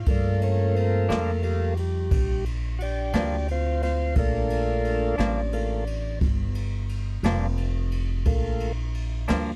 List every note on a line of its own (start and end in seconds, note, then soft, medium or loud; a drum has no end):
0.06 1.06 G2 medium
0.06 1.41 A3 soft
0.06 1.09 A#3 soft
0.06 1.43 F4 medium
0.06 kick loud
0.06 ride medium
0.11 0.42 D4 medium
0.41 0.75 C#4 medium
0.41 ride medium
0.75 1.08 C4 medium
0.75 ride medium
1.09 2.09 F2 medium
1.09 1.30 G2 medium
1.09 1.30 F3 medium
1.09 1.30 A#3 medium
1.09 1.42 A#3 medium
1.09 1.30 D4 medium
1.09 snare loud
1.09 ride medium
1.42 1.77 G3 medium
1.42 1.74 A3 soft
1.42 1.74 A#3 soft
1.42 1.75 F4 medium
1.42 ride medium
1.77 2.45 G3 medium
1.77 ride medium
2.11 3.11 A#1 medium
2.11 kick loud
2.11 ride medium
2.45 ride medium
2.79 3.13 D4 medium
2.79 2.82 F#4 medium
2.79 ride medium
2.83 3.15 G4 medium
3.13 4.14 D2 medium
3.13 3.35 G2 medium
3.13 3.35 F3 medium
3.13 3.35 A#3 medium
3.13 3.35 D4 medium
3.13 3.47 D4 medium
3.13 snare loud
3.13 ride medium
3.18 3.49 G4 medium
3.48 3.82 C4 medium
3.48 3.82 F4 medium
3.48 ride medium
3.82 4.15 C4 medium
3.82 4.16 F4 medium
3.82 snare soft
3.82 ride medium
4.15 5.16 A#1 medium
4.15 5.15 A3 soft
4.15 5.16 A#3 soft
4.15 6.19 D4 medium
4.15 5.16 F4 medium
4.15 kick loud
4.15 ride medium
4.50 ride medium
4.84 ride medium
5.18 6.18 A1 medium
5.18 5.40 G2 medium
5.18 5.40 F3 medium
5.18 5.40 A#3 medium
5.18 5.39 D4 medium
5.18 snare loud
5.18 ride medium
5.53 5.84 A3 soft
5.53 5.84 A#3 soft
5.53 5.84 F4 medium
5.53 ride medium
5.87 ride medium
6.21 7.21 G1 medium
6.21 kick loud
6.21 ride medium
6.55 ride medium
6.89 ride medium
7.23 8.23 F1 medium
7.23 7.46 G2 medium
7.23 7.46 F3 medium
7.23 7.46 A#3 medium
7.23 7.45 D4 medium
7.23 snare loud
7.23 ride medium
7.57 ride medium
7.91 ride medium
8.25 9.26 A#1 medium
8.25 8.72 A3 soft
8.25 8.72 A#3 soft
8.25 8.72 F4 medium
8.25 kick loud
8.25 ride medium
8.60 ride medium
8.94 ride medium
9.28 9.56 D2 medium
9.28 9.50 G2 medium
9.28 9.50 F3 medium
9.28 9.50 A#3 medium
9.28 9.49 D4 medium
9.28 snare loud
9.28 ride medium